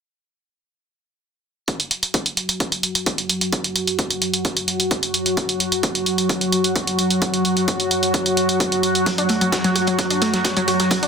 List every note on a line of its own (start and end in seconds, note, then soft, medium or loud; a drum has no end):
1.68 11.08 F#3 medium
1.68 11.08 F#4 medium
1.68 kick loud
1.68 closed hi-hat medium
1.80 closed hi-hat medium
1.91 closed hi-hat medium
2.03 closed hi-hat medium
2.14 kick loud
2.14 closed hi-hat medium
2.26 closed hi-hat medium
2.37 closed hi-hat medium
2.49 closed hi-hat medium
2.60 kick loud
2.60 closed hi-hat medium
2.72 closed hi-hat medium
2.83 closed hi-hat medium
2.95 closed hi-hat medium
3.06 kick loud
3.06 closed hi-hat medium
3.18 closed hi-hat medium
3.29 closed hi-hat medium
3.41 closed hi-hat medium
3.53 kick loud
3.53 closed hi-hat medium
3.64 closed hi-hat medium
3.76 closed hi-hat medium
3.87 closed hi-hat medium
3.99 kick loud
3.99 closed hi-hat medium
4.11 closed hi-hat medium
4.22 closed hi-hat medium
4.34 closed hi-hat medium
4.45 kick loud
4.45 closed hi-hat loud
4.57 closed hi-hat medium
4.68 closed hi-hat medium
4.80 closed hi-hat medium
4.91 kick loud
4.91 closed hi-hat medium
5.03 closed hi-hat medium
5.14 closed hi-hat medium
5.26 closed hi-hat medium
5.37 kick loud
5.37 closed hi-hat medium
5.49 closed hi-hat medium
5.60 closed hi-hat medium
5.72 closed hi-hat medium
5.83 kick loud
5.83 closed hi-hat medium
5.95 closed hi-hat medium
6.06 closed hi-hat medium
6.18 closed hi-hat medium
6.29 kick loud
6.29 closed hi-hat medium
6.41 closed hi-hat medium
6.52 closed hi-hat medium
6.64 closed hi-hat medium
6.76 kick loud
6.76 closed hi-hat medium
6.87 closed hi-hat medium
6.99 closed hi-hat medium
7.10 closed hi-hat medium
7.22 kick loud
7.22 closed hi-hat medium
7.34 closed hi-hat soft
7.45 closed hi-hat medium
7.57 closed hi-hat soft
7.68 kick loud
7.68 closed hi-hat medium
7.80 closed hi-hat medium
7.91 closed hi-hat medium
8.03 closed hi-hat medium
8.14 kick loud
8.14 closed hi-hat medium
8.26 closed hi-hat soft
8.37 closed hi-hat medium
8.49 closed hi-hat soft
8.60 kick loud
8.60 closed hi-hat medium
8.72 closed hi-hat medium
8.83 closed hi-hat medium
8.95 closed hi-hat soft
9.06 9.12 F#3 medium
9.06 kick loud
9.06 closed hi-hat medium
9.18 9.27 D4 medium
9.18 closed hi-hat soft
9.29 9.39 A3 medium
9.29 closed hi-hat medium
9.41 9.50 F#3 medium
9.41 closed hi-hat soft
9.52 9.56 F#4 medium
9.52 kick loud
9.52 snare loud
9.52 closed hi-hat medium
9.64 9.68 F#3 loud
9.64 snare soft
9.64 closed hi-hat soft
9.76 9.82 F#4 medium
9.76 closed hi-hat medium
9.87 9.93 F#3 medium
9.87 closed hi-hat soft
9.99 10.05 F#3 medium
9.99 kick loud
9.99 closed hi-hat medium
10.10 10.19 D4 medium
10.10 closed hi-hat soft
10.22 10.31 A3 medium
10.22 snare soft
10.22 closed hi-hat medium
10.34 10.42 F#3 medium
10.34 snare soft
10.34 closed hi-hat soft
10.44 10.48 F#4 medium
10.44 kick loud
10.44 snare loud
10.44 closed hi-hat medium
10.57 10.60 F#3 loud
10.57 closed hi-hat medium
10.68 10.74 F#4 medium
10.68 closed hi-hat medium
10.80 10.86 F#3 medium
10.80 snare soft
10.80 closed hi-hat soft
10.91 10.97 F#3 medium
10.91 kick loud
10.91 closed hi-hat medium
11.03 11.08 D4 medium
11.03 closed hi-hat soft